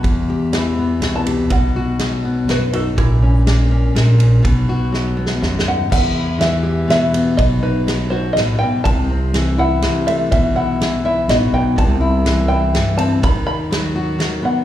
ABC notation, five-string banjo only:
X:1
M:3/4
L:1/16
Q:1/4=123
K:Em
V:1 name="Five-string banjo"
a4 b4 z a3 | f4 z4 [FB]2 [FA]2 | E12 | z8 z2 f2 |
f4 e4 e4 | ^d2 B4 c2 d2 g2 | a4 z2 f4 e2 | e2 f4 e2 ^d2 g2 |
a4 z2 g4 a2 | b2 b8 f2 |]